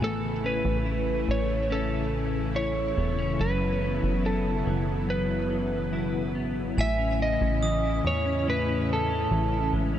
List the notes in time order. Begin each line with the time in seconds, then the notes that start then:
Already playing: E3 B3 F#4 G#4 G#5 B5
0.01 A1 A2 C#3 A3 E4 A4
0.44 C#4 B4
0.65 A1
0.86 E4
1.28 A1 C#5
1.70 C#4 A4
2.55 E4 C#5
2.97 E1 B3
3.19 C#4
3.39 F#1 F#2 F#3 B3 B4
3.82 B3
4.03 F#1
4.24 E4 A4
4.66 F#1 E3
5.09 B3 B4
5.51 E3
5.93 E4
6.35 G#1 B3
6.77 A1 A2 C#3 E3 C#4 E4 E5 G#5
6.99 C#4
7.20 E4 D#5
7.41 A1 C#4
7.62 E3 D#6
7.83 E4
8.04 E2 C#5
8.26 C#4
8.47 A2 E4 B4
8.68 C#4
8.89 E4
8.93 A4
9.10 C#4
9.31 A1 E3
9.52 E4
9.73 A1 G#3
9.94 C#4